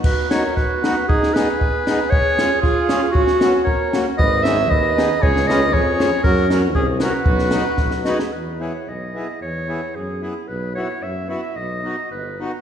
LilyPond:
<<
  \new Staff \with { instrumentName = "Clarinet" } { \time 2/4 \key b \major \tempo 4 = 115 b'8 cis''8 b'4 | gis'8 b'4. | cis''4 gis'4 | fis'4 cis''8. r16 |
dis''8 e''8 dis''4 | cis''8 dis''8 cis''4 | ais'8 r8 gis'8 b'8~ | b'4. gis'8 |
\key e \major b'8 cis''8 dis''4 | cis''4 gis'8 gis'8 | b'8 cis''8 e''8 e''8 | dis''4 b'8. r16 | }
  \new Staff \with { instrumentName = "Trumpet" } { \time 2/4 \key b \major fis'8 ais'8 fis'4 | dis'8 gis'4. | gis'4 eis'4 | cis'4 ais'8. r16 |
b'8 cis''8 b'4 | gis'8 b'8 gis'4 | fis'8 r8 cis'8 fis'8~ | fis'4. r8 |
\key e \major r2 | r2 | r2 | r2 | }
  \new Staff \with { instrumentName = "Accordion" } { \time 2/4 \key b \major r8 <b dis' fis'>8 r8 <b dis' fis'>8 | r8 <b dis' gis'>8 r8 <b dis' gis'>8 | r8 <cis' eis' gis'>8 r8 <cis' eis' gis'>8 | r8 <b cis' fis'>8 r8 <ais cis' fis'>8 |
r8 <b dis' gis'>8 r8 <b dis' gis'>8 | r8 <cis' eis' gis'>8 r8 <cis' eis' gis'>8 | r8 <cis' fis' ais'>8 r8 <cis' fis' ais'>8 | r8 <dis' fis' b'>8 r8 <dis' fis' b'>8 |
\key e \major r8 <b e' gis'>8 r8 <b e' gis'>8 | r8 <b e' gis'>8 r8 <b e' gis'>8 | r8 <b e' fis'>8 r8 <b e' fis'>8 | r8 <b dis' fis'>8 r8 <b dis' fis'>8 | }
  \new Staff \with { instrumentName = "Tuba" } { \clef bass \time 2/4 \key b \major r2 | r2 | r2 | r2 |
gis,,4 dis,4 | cis,4 eis,4 | fis,4 c,4 | b,,4 b,,4 |
\key e \major e,4 b,,4 | e,4 fis,4 | b,,4 fis,4 | b,,4 g,,4 | }
  \new DrumStaff \with { instrumentName = "Drums" } \drummode { \time 2/4 <cymc bd>8 <hhp sn>8 <bd sn>8 <hhp sn>8 | bd16 sn16 <hhp sn>8 bd8 <hhp sn>8 | bd8 <hhp sn>8 <bd sn>8 <hhp sn>8 | bd16 sn16 <hhp sn>8 bd8 <hhp sn>8 |
bd8 <hhp sn>8 bd8 <hhp sn>8 | bd16 sn16 <hhp sn>8 bd8 <hhp sn>8 | bd8 <hhp sn>8 bd8 <hhp sn>8 | bd16 sn16 <hhp sn>8 <bd sn>16 sn16 <hhp sn>16 sn16 |
r4 r4 | r4 r4 | r4 r4 | r4 r4 | }
>>